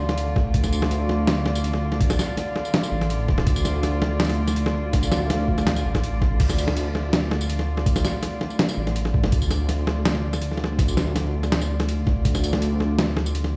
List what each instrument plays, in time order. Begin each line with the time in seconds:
Already playing: detuned saw bass D2, cello section D3 A3 F4 D5
0.09 snare, closed hi-hat
0.18 closed hi-hat
0.36 kick, snare
0.54 detuned saw bass D2, kick, closed hi-hat
0.64 snare, tambourine
0.73 closed hi-hat, tambourine
0.82 snare
0.91 closed hi-hat
1.09 snare
1.27 snare, closed hi-hat
1.46 snare
1.55 closed hi-hat, tambourine
1.64 detuned saw bass D2, closed hi-hat
1.73 snare
1.92 snare
2.01 kick, closed hi-hat
2.10 snare, tambourine
2.19 snare, closed hi-hat, tambourine
2.21 closed hi-hat
2.24 closed hi-hat
2.26 closed hi-hat
2.37 snare, closed hi-hat
2.56 snare
2.65 tambourine
2.74 snare, closed hi-hat
2.83 tambourine
2.92 detuned saw bass A1
3.01 snare, closed hi-hat
3.10 closed hi-hat
3.28 kick, snare
3.38 snare
3.47 detuned saw bass D2, kick, closed hi-hat
3.56 tambourine
3.65 snare, closed hi-hat, tambourine
3.83 snare, closed hi-hat
4.02 snare
4.20 snare, closed hi-hat
4.25 closed hi-hat
4.29 snare, closed hi-hat
4.34 closed hi-hat
4.48 snare, closed hi-hat, tambourine
4.56 detuned saw bass D2, closed hi-hat
4.66 snare
4.93 kick, snare, closed hi-hat
5.03 tambourine
5.12 detuned saw bass D2, snare, closed hi-hat, tambourine
5.30 snare, closed hi-hat
5.48 kick
5.58 snare, tambourine
5.67 snare, closed hi-hat
5.71 snare
5.76 closed hi-hat, tambourine
5.85 detuned saw bass A1
5.94 kick, snare, closed hi-hat
6.04 closed hi-hat
6.21 kick, snare
6.40 detuned saw bass D2, kick, closed hi-hat, crash
6.50 snare, tambourine
6.58 closed hi-hat, tambourine
6.68 snare
6.77 closed hi-hat
6.95 snare
7.13 snare, closed hi-hat
7.31 snare
7.41 closed hi-hat, tambourine
7.49 detuned saw bass D2, closed hi-hat
7.59 snare
7.77 snare
7.86 kick, closed hi-hat
7.96 snare, tambourine
8.05 snare, closed hi-hat, tambourine
8.23 snare, closed hi-hat
8.41 snare
8.50 tambourine
8.59 snare, closed hi-hat
8.69 tambourine
8.77 detuned saw bass A1
8.87 snare, closed hi-hat
8.96 closed hi-hat
9.05 snare
9.14 kick
9.24 snare
9.32 detuned saw bass D2, kick, closed hi-hat
9.42 tambourine
9.51 snare, closed hi-hat, tambourine
9.69 snare, closed hi-hat
9.87 snare
10.05 snare, closed hi-hat
10.15 snare
10.33 snare, closed hi-hat, tambourine
10.42 detuned saw bass D2, closed hi-hat
10.51 snare
10.57 snare
10.64 snare
10.79 kick, snare, closed hi-hat
10.88 tambourine
10.97 detuned saw bass D2, snare, closed hi-hat, tambourine
11.16 snare, closed hi-hat
11.43 snare, tambourine
11.52 detuned saw bass D2, snare, closed hi-hat
11.61 snare, tambourine
11.80 snare, closed hi-hat
11.89 closed hi-hat
12.07 kick, snare
12.25 detuned saw bass D2, kick, closed hi-hat
12.35 snare, tambourine
12.44 closed hi-hat, tambourine
12.53 snare
12.62 closed hi-hat
12.80 snare
12.99 snare, closed hi-hat
13.17 snare
13.26 closed hi-hat, tambourine
13.35 detuned saw bass D2, closed hi-hat
13.44 snare